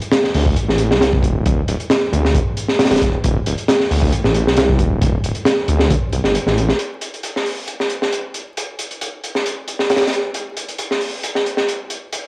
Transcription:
0.02 closed hi-hat
0.12 snare, closed hi-hat
0.24 snare
0.34 detuned saw bass D2, open hi-hat
0.46 kick
0.56 detuned saw bass A1, closed hi-hat
0.68 detuned saw bass A1, snare
0.78 closed hi-hat
0.91 detuned saw bass C2, snare
1.01 snare, closed hi-hat
1.13 kick
1.23 detuned saw bass D1, kick, closed hi-hat
1.46 kick, closed hi-hat
1.68 detuned saw bass D1, closed hi-hat
1.80 closed hi-hat
1.90 snare, closed hi-hat
2.12 detuned saw bass D2, closed hi-hat
2.25 snare
2.35 kick, closed hi-hat
2.57 closed hi-hat
2.68 snare
2.79 snare, closed hi-hat
2.85 snare, closed hi-hat
2.91 detuned saw bass D1, snare, closed hi-hat
2.96 snare, closed hi-hat
3.02 detuned saw bass D1, kick, closed hi-hat
3.24 detuned saw bass D1, kick, closed hi-hat
3.46 detuned saw bass D1, closed hi-hat
3.58 closed hi-hat
3.68 snare, closed hi-hat
3.80 snare
3.91 detuned saw bass D2, open hi-hat
4.02 kick
4.12 detuned saw bass A1, closed hi-hat
4.24 detuned saw bass A1, snare
4.35 closed hi-hat
4.46 detuned saw bass C2, snare
4.57 snare, closed hi-hat
4.69 kick
4.79 detuned saw bass D1, kick, closed hi-hat
5.02 kick, closed hi-hat
5.24 detuned saw bass D1, closed hi-hat
5.35 closed hi-hat
5.45 snare, closed hi-hat
5.68 detuned saw bass D2, closed hi-hat
5.79 snare
5.91 kick, closed hi-hat
6.13 detuned saw bass C2, closed hi-hat
6.24 detuned saw bass G1, snare
6.35 closed hi-hat
6.46 detuned saw bass A1, snare
6.58 closed hi-hat
6.69 snare
6.79 closed hi-hat
7.01 closed hi-hat
7.14 closed hi-hat
7.23 closed hi-hat
7.36 snare
7.46 open hi-hat
7.68 closed hi-hat
7.80 snare
7.90 closed hi-hat
8.02 snare
8.12 closed hi-hat
8.34 closed hi-hat
8.57 closed hi-hat
8.79 closed hi-hat
8.91 closed hi-hat
9.01 closed hi-hat
9.24 closed hi-hat
9.35 snare
9.46 closed hi-hat
9.68 closed hi-hat
9.79 snare
9.90 snare, closed hi-hat
9.96 snare, closed hi-hat
10.01 snare, closed hi-hat
10.07 snare, closed hi-hat
10.13 closed hi-hat
10.34 closed hi-hat
10.57 closed hi-hat
10.68 closed hi-hat
10.78 closed hi-hat
10.91 snare
11.01 open hi-hat
11.23 closed hi-hat
11.35 snare
11.46 closed hi-hat
11.57 snare
11.69 closed hi-hat
11.90 closed hi-hat
12.12 closed hi-hat

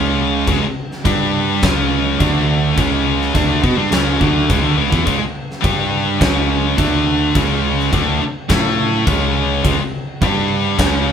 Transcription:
Already playing: picked electric bass C#2, distorted electric guitar C#3 G#3 C#4
0.47 picked electric bass C#2, distorted electric guitar C#3 G#3, kick, crash
0.62 muted picked electric bass stroke, muted overdriven electric guitar stroke, muted distorted electric guitar stroke
0.92 snare
1.05 picked electric bass G2, distorted electric guitar G3 D4 G4, kick, crash
1.62 picked electric bass C#2, distorted electric guitar C#3 G#3 C#4, kick, snare, crash
2.19 picked electric bass D2, distorted electric guitar D3 A3 D4, kick, crash
2.77 picked electric bass C#2, distorted electric guitar C#3 G#3 C#4, kick, crash
3.21 snare
3.34 picked electric bass D2, distorted electric guitar D3 A3 D4, kick, crash
3.61 picked electric bass B2, distorted electric guitar B3 F#4, kick
3.77 picked electric bass G2, distorted electric guitar G3 D4
3.91 picked electric bass C#2, distorted electric guitar C#3 G#3 C#4, snare, crash
4.20 picked electric bass D2, distorted electric guitar D3 A3 D4, kick
4.49 picked electric bass C#2, distorted electric guitar C#3 G#3, kick, crash
4.64 picked electric bass D2, distorted electric guitar D3 A3
4.77 picked electric bass C#2, distorted electric guitar C#3 G#3
4.91 picked electric bass E2, distorted electric guitar E3 B3, kick
5.05 picked electric bass C#2, distorted electric guitar C#3 G#3, kick, crash
5.19 muted distorted electric guitar stroke, muted overdriven electric guitar stroke, muted picked electric bass stroke
5.51 snare
5.61 picked electric bass G2, distorted electric guitar G3 D4 G4, kick, crash
6.19 picked electric bass C#2, distorted electric guitar C#3 G#3 C#4, kick, snare, crash
6.77 picked electric bass D2, distorted electric guitar D3 A3 D4, kick, crash
7.35 picked electric bass C#2, distorted electric guitar C#3 G#3 C#4, kick, crash
7.79 snare
7.92 picked electric bass D2, distorted electric guitar D3 A3 D4, kick, crash
8.21 muted distorted electric guitar stroke, muted overdriven electric guitar stroke, muted picked electric bass stroke
8.49 picked electric bass A2, distorted electric guitar A3 E4 A4, kick, snare, crash
9.07 picked electric bass C#2, distorted electric guitar C#3 G#3 C#4, kick, crash
9.63 picked electric bass C#2, distorted electric guitar C#3 G#3, kick, crash
9.79 muted distorted electric guitar stroke, muted picked electric bass stroke, muted overdriven electric guitar stroke
10.22 picked electric bass G2, distorted electric guitar G3 D4 G4, kick, crash
10.79 picked electric bass C#2, distorted electric guitar C#3 G#3 C#4, kick, snare, crash

